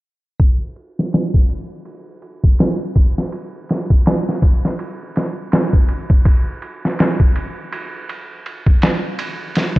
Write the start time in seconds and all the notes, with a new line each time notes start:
0.40 kick, ride
0.76 ride
0.99 snare
1.13 snare, ride
1.34 kick
1.49 ride
1.85 ride
2.22 ride
2.44 kick
2.59 snare, ride
2.95 kick, ride
3.18 snare
3.32 ride
3.69 snare, ride
3.90 kick
4.06 snare, ride
4.29 snare
4.42 kick, ride
4.65 snare
4.79 ride
5.16 snare, ride
5.52 snare, ride
5.73 kick
5.89 ride
6.10 kick
6.25 kick, ride
6.62 ride
6.85 snare
6.99 snare, ride
7.20 kick
7.36 ride
7.72 ride
8.09 ride
8.46 ride
8.66 kick
8.82 snare, ride
9.19 ride
9.55 snare, ride